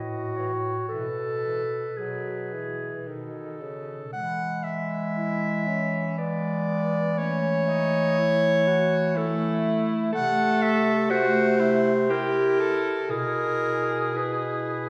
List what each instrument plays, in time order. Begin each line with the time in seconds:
Already playing: bass clarinet A2, clarinet F#4 D#5
0.36 tenor saxophone E3, clarinet C#5
0.89 bass clarinet B2, tenor saxophone E3, clarinet A4 B4
1.45 tenor saxophone E3
1.97 bass clarinet B2, tenor saxophone F#3, clarinet G#4
2.53 tenor saxophone E3
3.06 bass clarinet B2, tenor saxophone D#3, clarinet A4
3.61 tenor saxophone C#3
4.12 bass clarinet E3, clarinet G#3 F#5
4.64 clarinet E5
5.17 tenor saxophone E4
5.67 tenor saxophone C#4
6.18 clarinet G#3 D5, tenor saxophone B3
7.18 clarinet A3 C#5, tenor saxophone C#4
7.68 tenor saxophone D#4
8.19 tenor saxophone E4
8.67 tenor saxophone F#4
9.15 clarinet A3 A4, tenor saxophone E4
10.13 bass clarinet C3, clarinet A3 F#5, tenor saxophone A4
10.62 clarinet E5
11.10 clarinet A3 C5, tenor saxophone F#4
11.60 tenor saxophone E4
12.09 clarinet E4 A#4, tenor saxophone G4
12.60 tenor saxophone A4
13.10 bass clarinet B2, clarinet E4 A#4, tenor saxophone G#4
14.15 clarinet E4 B4